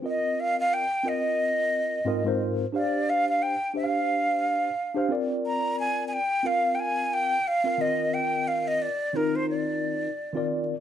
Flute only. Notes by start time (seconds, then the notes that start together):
0.08 D#5
0.40 F5
0.60 F5
0.74 G5
1.09 D#5
2.76 D5
3.10 F5
3.29 F5
3.42 G5
3.76 F5
5.46 A#5
5.80 G#5
6.08 G#5
6.13 G5
6.46 F5
6.75 G5
6.80 G#5
7.14 G5
7.48 F5
7.81 D#5
8.14 G5
8.48 F5
8.68 D#5
8.82 D5
9.16 A#4
9.36 C5
9.50 D5